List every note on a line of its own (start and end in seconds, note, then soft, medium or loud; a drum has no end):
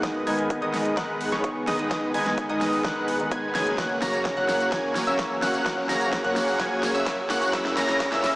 0.00 0.24 D#3 medium
0.00 3.74 D#3 medium
0.00 0.24 G#3 medium
0.00 0.23 G#3 medium
0.00 3.75 G#3 medium
0.00 0.24 B3 medium
0.00 3.75 B3 medium
0.00 0.23 B3 medium
0.00 0.24 D#4 medium
0.00 0.23 D#4 medium
0.00 3.75 G#4 medium
0.00 0.23 B4 medium
0.00 0.23 D#5 medium
0.00 0.23 D#6 medium
0.00 kick loud
0.00 snare medium
0.00 closed hi-hat medium
0.00 riser medium
0.26 0.59 D#3 medium
0.26 0.59 G#3 medium
0.26 0.59 B3 medium
0.26 0.59 D#4 medium
0.26 0.59 D#4 loud
0.26 0.59 B4 medium
0.26 0.59 G#5 medium
0.26 0.59 G#6 medium
0.26 open hi-hat loud
0.39 closed hi-hat soft
0.50 kick loud
0.50 closed hi-hat medium
0.61 0.94 D#3 medium
0.61 0.94 G#3 medium
0.61 0.94 B3 medium
0.61 0.94 D#4 medium
0.61 0.95 D#4 loud
0.61 0.94 B4 medium
0.61 0.94 D#5 medium
0.61 0.94 D#6 medium
0.61 closed hi-hat soft
0.74 snare medium
0.74 open hi-hat loud
0.85 closed hi-hat soft
0.96 1.17 D#3 medium
0.96 1.17 G#3 medium
0.96 1.29 G#3 medium
0.96 1.29 B3 medium
0.96 1.18 B3 medium
0.96 1.29 D#4 medium
0.96 1.18 D#4 medium
0.96 1.29 B4 medium
0.96 1.29 F#5 loud
0.96 1.29 F#6 loud
0.96 kick loud
0.96 snare medium
0.96 closed hi-hat medium
1.21 open hi-hat loud
1.32 1.64 D#3 medium
1.32 1.64 G#3 medium
1.32 1.50 G#3 medium
1.32 1.50 B3 medium
1.32 1.65 B3 medium
1.32 1.50 D#4 medium
1.32 1.65 D#4 medium
1.32 1.50 B4 medium
1.32 1.50 C#5 medium
1.32 1.50 C#6 medium
1.32 snare medium
1.32 closed hi-hat medium
1.44 kick loud
1.44 closed hi-hat medium
1.67 2.11 D#3 medium
1.67 2.11 G#3 medium
1.67 1.87 G#3 medium
1.67 1.87 B3 medium
1.67 2.12 B3 medium
1.67 1.87 D#4 medium
1.67 2.12 D#4 medium
1.67 1.87 B4 medium
1.67 1.87 D#5 medium
1.67 1.87 D#6 loud
1.67 snare medium
1.67 open hi-hat loud
1.79 closed hi-hat medium
1.91 2.11 G#3 medium
1.91 2.11 B3 medium
1.91 2.11 D#4 medium
1.91 2.11 B4 medium
1.91 2.11 D#5 medium
1.91 2.11 D#6 medium
1.91 kick loud
1.91 snare medium
1.91 closed hi-hat medium
2.14 2.46 D#3 medium
2.14 2.47 G#3 medium
2.14 2.47 B3 medium
2.14 2.47 D#4 medium
2.14 2.47 D#4 loud
2.14 2.47 B4 medium
2.14 2.47 G#5 medium
2.14 2.47 G#6 medium
2.14 open hi-hat loud
2.26 snare medium
2.26 closed hi-hat soft
2.38 kick loud
2.38 closed hi-hat medium
2.49 2.81 D#3 medium
2.49 2.82 G#3 medium
2.49 2.82 B3 medium
2.49 2.82 D#4 medium
2.49 2.82 D#4 loud
2.49 2.82 B4 medium
2.49 2.82 D#5 medium
2.49 2.82 D#6 medium
2.49 closed hi-hat soft
2.61 snare medium
2.61 open hi-hat loud
2.73 open hi-hat medium
2.84 3.05 D#3 medium
2.84 3.05 G#3 medium
2.84 3.17 G#3 medium
2.84 3.17 B3 medium
2.84 3.05 B3 medium
2.84 3.17 D#4 medium
2.84 3.05 D#4 medium
2.84 3.17 B4 medium
2.84 3.17 F#5 loud
2.84 3.17 F#6 medium
2.84 kick loud
2.84 snare medium
2.84 closed hi-hat medium
3.08 open hi-hat loud
3.19 3.52 D#3 medium
3.19 3.52 G#3 medium
3.19 3.52 B3 medium
3.19 3.52 D#4 medium
3.19 closed hi-hat soft
3.31 3.52 G#3 medium
3.31 3.52 B3 medium
3.31 3.52 D#4 medium
3.31 3.52 B4 medium
3.31 3.52 G#5 medium
3.31 3.52 G#6 medium
3.31 kick loud
3.31 closed hi-hat medium
3.54 3.99 C#3 medium
3.54 3.99 F#3 medium
3.54 3.75 G#3 medium
3.54 3.99 A#3 medium
3.54 3.75 B3 medium
3.54 3.99 C#4 medium
3.54 3.75 D#4 medium
3.54 3.75 B4 medium
3.54 3.75 G#5 medium
3.54 3.75 G#6 loud
3.54 snare medium
3.54 open hi-hat loud
3.67 closed hi-hat soft
3.78 7.50 F#3 medium
3.78 8.36 A#3 medium
3.78 3.98 A#3 medium
3.78 3.98 C#4 medium
3.78 7.50 C#4 medium
3.78 3.98 F#4 medium
3.78 5.64 A#4 medium
3.78 3.98 C#5 medium
3.78 3.98 F#5 medium
3.78 3.98 F#6 medium
3.78 kick loud
3.78 snare medium
3.78 closed hi-hat medium
3.78 tambourine soft
4.01 4.34 C#3 medium
4.01 4.34 F#3 medium
4.01 4.34 A#3 medium
4.01 4.34 C#4 medium
4.01 4.34 C#4 loud
4.01 4.34 F#4 medium
4.01 4.34 C#5 medium
4.01 4.34 A#5 medium
4.01 4.34 A#6 medium
4.01 snare medium
4.01 open hi-hat loud
4.01 tambourine medium
4.13 closed hi-hat soft
4.13 tambourine soft
4.25 kick loud
4.25 snare medium
4.25 closed hi-hat medium
4.25 tambourine soft
4.36 4.69 C#3 medium
4.36 4.69 F#3 medium
4.36 4.69 A#3 medium
4.36 4.69 C#4 medium
4.36 4.70 C#4 loud
4.36 4.69 F#4 medium
4.36 4.69 C#5 medium
4.36 4.69 F#5 medium
4.36 4.69 F#6 medium
4.36 closed hi-hat soft
4.49 snare medium
4.49 open hi-hat loud
4.49 tambourine medium
4.60 closed hi-hat soft
4.60 tambourine soft
4.71 4.92 C#3 medium
4.71 4.92 F#3 medium
4.71 5.04 A#3 medium
4.71 4.93 A#3 medium
4.71 5.04 C#4 medium
4.71 4.93 C#4 medium
4.71 5.04 F#4 medium
4.71 5.04 C#5 medium
4.71 5.04 G#5 loud
4.71 5.04 G#6 medium
4.71 kick loud
4.71 snare medium
4.71 closed hi-hat medium
4.71 tambourine soft
4.96 snare medium
4.96 open hi-hat loud
4.96 tambourine medium
5.07 5.39 C#3 medium
5.07 5.39 F#3 medium
5.07 5.25 A#3 medium
5.07 5.40 A#3 medium
5.07 5.25 C#4 medium
5.07 5.40 C#4 medium
5.07 5.25 F#4 medium
5.07 5.25 C#5 medium
5.07 5.25 E5 medium
5.07 5.24 E6 medium
5.07 closed hi-hat soft
5.07 tambourine soft
5.19 kick loud
5.19 snare medium
5.19 closed hi-hat medium
5.19 tambourine soft
5.42 5.86 C#3 medium
5.42 5.86 F#3 medium
5.42 5.62 A#3 medium
5.42 5.87 A#3 medium
5.42 5.62 C#4 medium
5.42 5.87 C#4 medium
5.42 5.62 F#4 medium
5.42 5.62 C#5 medium
5.42 5.62 F#5 medium
5.42 5.62 F#6 loud
5.42 snare medium
5.42 open hi-hat loud
5.42 tambourine medium
5.54 closed hi-hat medium
5.54 tambourine soft
5.66 5.86 A#3 medium
5.66 5.86 C#4 medium
5.66 5.86 F#4 medium
5.66 7.51 G#4 medium
5.66 5.86 C#5 medium
5.66 5.86 F#5 medium
5.66 5.86 F#6 medium
5.66 kick loud
5.66 snare medium
5.66 closed hi-hat medium
5.66 tambourine soft
5.89 6.21 C#3 medium
5.89 6.22 F#3 medium
5.89 6.22 A#3 medium
5.89 6.22 C#4 medium
5.89 6.22 C#4 loud
5.89 6.22 F#4 medium
5.89 6.22 C#5 medium
5.89 6.22 A#5 medium
5.89 6.22 A#6 loud
5.89 snare medium
5.89 open hi-hat loud
5.89 tambourine medium
6.01 closed hi-hat medium
6.01 tambourine soft
6.13 kick loud
6.13 snare medium
6.13 closed hi-hat medium
6.13 tambourine soft
6.24 6.57 C#3 medium
6.24 6.57 F#3 medium
6.24 6.57 A#3 medium
6.24 6.57 C#4 medium
6.24 6.57 C#4 loud
6.24 6.57 F#4 medium
6.24 6.57 C#5 medium
6.24 6.57 F#5 medium
6.24 6.57 F#6 medium
6.24 closed hi-hat soft
6.36 snare medium
6.36 open hi-hat loud
6.36 tambourine medium
6.48 open hi-hat medium
6.48 tambourine soft
6.59 6.80 C#3 medium
6.59 6.80 F#3 medium
6.59 6.92 A#3 medium
6.59 6.80 A#3 medium
6.59 6.92 C#4 medium
6.59 6.80 C#4 loud
6.59 6.92 F#4 medium
6.59 6.92 C#5 medium
6.59 6.92 G#6 loud
6.59 kick loud
6.59 snare medium
6.59 closed hi-hat medium
6.59 tambourine soft
6.83 snare medium
6.83 open hi-hat loud
6.83 tambourine medium
6.94 7.27 C#3 medium
6.94 7.27 F#3 medium
6.94 7.12 A#3 medium
6.94 7.27 A#3 medium
6.94 7.12 C#4 medium
6.94 7.27 C#4 medium
6.94 7.12 F#4 medium
6.94 7.12 C#5 medium
6.94 7.12 E5 medium
6.94 7.12 E6 medium
6.94 closed hi-hat medium
6.94 tambourine soft
7.06 kick loud
7.06 snare medium
7.06 closed hi-hat medium
7.06 tambourine soft
7.29 7.74 C#3 medium
7.29 7.74 E3 medium
7.29 7.50 A#3 medium
7.29 7.74 A#3 medium
7.29 7.50 C#4 medium
7.29 7.74 C#4 medium
7.29 7.50 F#4 medium
7.29 7.50 C#5 medium
7.29 7.50 F#5 medium
7.29 7.50 F#6 loud
7.29 snare medium
7.29 open hi-hat loud
7.29 tambourine medium
7.42 closed hi-hat medium
7.42 tambourine soft
7.53 8.36 E3 medium
7.53 7.73 A#3 medium
7.53 8.36 C#4 medium
7.53 7.73 C#4 medium
7.53 8.36 A#4 medium
7.53 7.73 E6 medium
7.53 kick loud
7.53 snare medium
7.53 closed hi-hat medium
7.65 snare medium
7.76 8.09 C#3 medium
7.76 8.09 E3 medium
7.76 8.09 A#3 medium
7.76 8.09 C#4 medium
7.76 8.09 C#4 loud
7.76 8.09 E4 medium
7.76 8.09 C#5 medium
7.76 8.09 A#5 loud
7.76 8.09 A#6 loud
7.76 snare medium
7.76 open hi-hat loud
7.76 tambourine medium
7.89 snare medium
7.89 closed hi-hat medium
7.89 tambourine soft
8.00 kick loud
8.00 snare medium
8.00 closed hi-hat medium
8.00 tambourine soft
8.11 8.36 C#3 loud
8.11 8.36 E3 medium
8.11 8.36 A#3 medium
8.11 8.36 C#4 medium
8.11 8.36 C#4 loud
8.11 8.36 E4 medium
8.11 8.36 C#5 medium
8.11 8.36 E5 loud
8.11 8.36 E6 medium
8.11 snare medium
8.11 closed hi-hat soft
8.24 snare medium
8.24 open hi-hat loud
8.24 tambourine medium